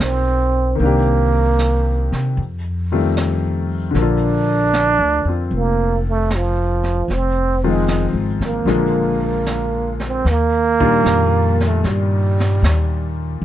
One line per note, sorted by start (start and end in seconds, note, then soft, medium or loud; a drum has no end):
0.00 0.75 B1 medium
0.00 0.80 F3 soft
0.00 0.81 G3 soft
0.00 0.78 A#3 soft
0.00 0.79 C4 soft
0.00 0.82 C4 medium
0.00 0.81 D4 soft
0.00 0.81 F4 soft
0.00 0.82 G4 soft
0.00 snare soft
0.00 hi-hat pedal soft
0.75 2.35 D#3 soft
0.75 2.36 A#3 soft
0.75 brush sweep soft
0.80 2.09 C2 medium
0.80 2.38 A#3 medium
0.80 2.38 C4 soft
0.80 2.39 D4 soft
0.86 2.41 G4 medium
1.59 snare soft
1.59 hi-hat pedal soft
2.12 2.35 C3 medium
2.12 snare soft
2.37 3.90 F2 medium
2.37 brush sweep soft
2.92 3.95 D#3 soft
2.92 3.95 G3 soft
2.92 3.95 A3 soft
2.92 3.95 C4 soft
2.92 3.95 F4 soft
3.17 snare soft
3.17 hi-hat pedal medium
3.91 4.95 A#1 medium
3.91 7.07 D3 medium
3.91 7.08 F3 soft
3.95 7.10 A#3 soft
3.95 7.09 A4 soft
3.95 brush sweep soft
3.95 snare soft
4.00 5.50 D4 loud
4.00 5.27 F4 medium
4.73 snare soft
4.73 hi-hat pedal soft
4.99 5.23 D2 medium
5.25 5.49 F2 medium
5.25 7.09 C4 soft
5.29 7.09 F4 soft
5.51 7.04 F1 medium
5.51 brush sweep soft
5.56 6.02 A#3 medium
6.09 6.36 A3 medium
6.30 snare soft
6.30 hi-hat pedal soft
6.35 7.15 F3 medium
6.83 snare soft
7.08 8.09 F1 medium
7.08 brush sweep soft
7.08 snare soft
7.14 7.69 C4 medium
7.63 8.67 D#3 soft
7.63 8.65 F3 soft
7.63 8.66 G#3 soft
7.63 8.07 G#3 medium
7.63 8.67 C4 soft
7.63 8.66 F4 soft
7.88 snare soft
7.88 hi-hat pedal soft
8.13 8.38 G#1 medium
8.40 8.64 A1 medium
8.40 snare soft
8.45 9.99 A#3 medium
8.65 10.22 A#1 medium
8.65 10.26 D3 soft
8.65 10.26 F3 soft
8.65 10.26 G#3 soft
8.65 10.27 A#3 soft
8.65 10.27 F4 medium
8.65 brush sweep soft
8.65 snare soft
9.46 snare soft
9.46 hi-hat pedal soft
10.00 snare soft
10.08 10.32 C4 medium
10.25 11.02 D#2 medium
10.25 brush sweep soft
10.25 snare soft
10.31 11.68 A#3 loud
10.80 11.80 A#2 medium
10.80 11.80 D#3 medium
10.80 11.80 G3 medium
10.80 11.80 D4 medium
10.80 11.80 F4 medium
10.80 kick soft
11.04 11.82 F2 medium
11.04 snare soft
11.04 hi-hat pedal soft
11.60 snare soft
11.66 11.86 A3 medium
11.84 12.61 G2 medium
11.84 11.89 F#3 soft
11.84 13.20 G3 medium
11.84 brush sweep soft
11.84 snare soft
12.40 snare soft
12.62 13.40 D#2 medium
12.62 snare medium
12.62 hi-hat pedal medium
13.42 13.45 D2 medium